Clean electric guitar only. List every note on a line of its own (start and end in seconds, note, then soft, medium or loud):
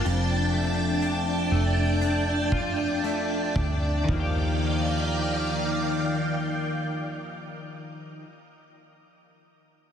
0.00 0.15 A#3 medium
0.00 0.15 D4 soft
0.00 0.15 A4 soft
0.05 4.08 F2 medium
0.53 1.50 A3 soft
1.02 2.01 D4 medium
1.52 3.02 A3 soft
2.01 3.56 D4 soft
2.52 4.19 F4 medium
3.04 4.12 A3 medium
3.56 4.16 D4 soft
4.04 8.24 D#3 medium
4.09 8.28 F3 medium
4.09 8.32 A#3 medium
4.16 8.36 D4 medium
4.16 8.39 G4 medium